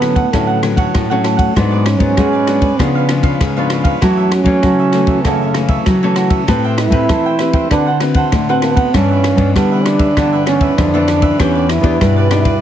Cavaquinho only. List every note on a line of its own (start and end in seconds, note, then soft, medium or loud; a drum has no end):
0.00 0.16 A4 medium
0.00 0.15 C#5 medium
0.00 0.14 F#5 medium
0.15 0.32 A4 soft
0.15 0.31 C#5 soft
0.15 0.31 F#5 medium
0.32 0.47 D4 soft
0.32 0.47 A4 soft
0.32 0.48 C#5 medium
0.32 0.46 F#5 medium
0.47 0.61 A4 medium
0.47 0.62 C#5 medium
0.47 0.62 F#5 medium
0.62 muted cavaquinho stroke soft
0.76 1.09 A4 medium
0.76 1.08 C#5 medium
0.76 1.07 F#5 medium
1.10 1.23 A4 medium
1.10 1.24 C#5 medium
1.10 1.24 F#5 medium
1.23 1.38 D4 soft
1.23 1.38 A4 medium
1.23 1.37 C#5 soft
1.23 1.36 F#5 soft
1.37 1.54 A4 medium
1.37 1.54 C#5 medium
1.37 1.53 F#5 medium
1.54 1.69 F#4 soft
1.54 1.70 G#4 soft
1.54 1.70 B4 medium
1.54 1.70 D5 medium
1.71 1.84 G#4 medium
1.71 1.85 B4 medium
1.71 1.85 D5 medium
1.85 muted cavaquinho stroke soft
2.17 2.32 F#4 medium
2.17 2.32 G#4 medium
2.17 2.33 B4 medium
2.17 2.32 D5 soft
2.33 2.62 G#4 medium
2.33 2.61 B4 medium
2.33 2.60 D5 medium
2.61 2.78 G#4 soft
2.61 2.77 B4 medium
2.61 2.77 D5 medium
2.79 2.93 F4 soft
2.79 2.94 B4 medium
2.79 2.94 C#5 medium
2.79 2.94 F5 medium
2.95 3.08 B4 medium
2.95 3.09 C#5 medium
2.95 3.09 F5 medium
3.09 muted cavaquinho stroke soft
3.23 3.55 B4 medium
3.23 3.55 C#5 medium
3.23 3.54 F5 medium
3.57 3.70 B4 medium
3.57 3.71 C#5 medium
3.57 3.71 F5 medium
3.71 3.85 F4 soft
3.71 3.85 B4 medium
3.71 3.84 C#5 medium
3.71 3.83 F5 soft
3.84 4.01 B4 medium
3.84 4.00 C#5 medium
3.84 4.00 F5 medium
4.01 4.16 F#4 medium
4.01 4.16 A4 medium
4.01 4.17 C#5 medium
4.01 4.16 E5 medium
4.17 4.30 A4 medium
4.17 4.31 C#5 medium
4.17 4.32 E5 medium
4.31 muted cavaquinho stroke soft
4.63 4.77 F#4 medium
4.63 4.78 A4 medium
4.63 4.78 C#5 medium
4.63 4.78 E5 medium
4.79 5.09 A4 medium
4.79 5.08 C#5 medium
4.79 5.07 E5 medium
5.08 5.24 A4 soft
5.08 5.24 C#5 soft
5.08 5.23 E5 medium
5.25 5.39 F#4 medium
5.25 5.40 A4 medium
5.25 5.40 C#5 medium
5.25 5.40 E5 medium
5.41 5.55 A4 medium
5.41 5.56 C#5 medium
5.41 5.55 E5 medium
5.56 muted cavaquinho stroke soft
5.69 6.01 A4 medium
5.69 6.01 C#5 medium
5.69 6.00 E5 medium
6.03 6.15 A4 medium
6.03 6.16 C#5 medium
6.03 6.17 E5 medium
6.15 6.31 F#4 medium
6.15 6.31 A4 medium
6.15 6.30 C#5 medium
6.15 6.29 E5 soft
6.30 6.46 A4 medium
6.30 6.46 C#5 medium
6.30 6.46 E5 medium
6.47 6.62 A4 medium
6.47 6.62 C5 medium
6.47 6.63 E5 medium
6.47 6.63 G5 medium
6.64 6.77 C5 medium
6.64 6.77 E5 medium
6.64 6.78 G5 medium
6.78 muted cavaquinho stroke soft
7.09 7.24 A4 medium
7.09 7.24 C5 medium
7.09 7.25 E5 medium
7.09 7.24 G5 medium
7.26 7.54 C5 medium
7.26 7.54 E5 medium
7.26 7.52 G5 medium
7.53 7.70 C5 soft
7.53 7.70 E5 soft
7.53 7.69 G5 medium
7.71 7.85 D4 soft
7.71 7.86 A4 soft
7.71 7.86 C5 soft
7.71 7.85 F#5 medium
7.87 8.00 A4 medium
7.87 8.00 C5 medium
7.87 8.00 F#5 medium
8.01 muted cavaquinho stroke soft
8.15 8.47 A4 medium
8.15 8.47 C5 medium
8.15 8.46 F#5 medium
8.50 8.62 A4 medium
8.50 8.63 C5 medium
8.50 8.63 F#5 medium
8.63 8.77 D4 soft
8.63 8.77 A4 soft
8.63 8.76 C5 soft
8.63 8.75 F#5 medium
8.76 8.93 A4 medium
8.76 8.92 C5 medium
8.76 8.92 F#5 medium
8.95 9.09 D4 medium
8.95 9.09 G4 medium
8.95 9.09 B4 medium
8.95 9.10 E5 medium
9.11 9.24 G4 medium
9.11 9.24 B4 medium
9.11 9.24 E5 medium
9.24 muted cavaquinho stroke soft
9.56 9.70 D4 soft
9.56 9.70 G4 medium
9.56 9.71 B4 medium
9.56 9.70 E5 medium
9.72 10.00 G4 medium
9.72 9.99 B4 medium
9.72 9.98 E5 medium
10.00 10.16 G4 soft
10.00 10.15 B4 medium
10.00 10.15 E5 medium
10.17 10.31 D4 soft
10.17 10.32 G4 medium
10.17 10.32 B4 medium
10.17 10.31 E5 medium
10.33 10.46 G4 medium
10.33 10.47 B4 medium
10.33 10.47 E5 medium
10.47 muted cavaquinho stroke soft
10.62 10.93 G4 medium
10.62 10.93 B4 medium
10.62 10.92 E5 medium
10.95 11.08 G4 medium
10.95 11.08 B4 medium
10.95 11.09 E5 medium
11.08 11.23 D4 soft
11.08 11.23 G4 soft
11.08 11.22 B4 medium
11.08 11.21 E5 medium
11.22 11.39 G4 medium
11.22 11.38 B4 medium
11.22 11.38 E5 medium
11.39 11.54 E4 soft
11.39 11.54 G4 soft
11.39 11.55 B4 medium
11.39 11.54 D5 soft
11.55 11.68 G4 medium
11.55 11.69 B4 medium
11.55 11.69 D5 medium
11.69 muted cavaquinho stroke soft
12.01 12.15 E4 medium
12.01 12.16 G4 medium
12.01 12.16 B4 medium
12.01 12.15 D5 medium
12.16 12.46 G4 medium
12.16 12.45 B4 medium
12.16 12.43 D5 medium
12.44 12.61 G4 soft
12.44 12.61 B4 medium
12.44 12.60 D5 medium